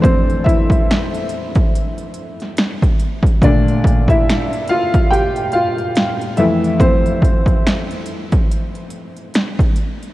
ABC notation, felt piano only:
X:1
M:4/4
L:1/16
Q:"Swing 16ths" 1/4=71
K:Flyd
V:1 name="Felt piano"
[Cc]2 [Ee]12 z2 | [Dd]3 [Ee]3 [Ff]2 [Gg]2 [Ff]4 [Ee]2 | [Cc]12- [Cc]2 z2 |]
V:2 name="Felt piano" clef=bass
[F,,E,A,]2 z12 z2 | [_B,,D,A,]2 z12 [F,,E,A,]2- | [F,,E,A,]4 z12 |]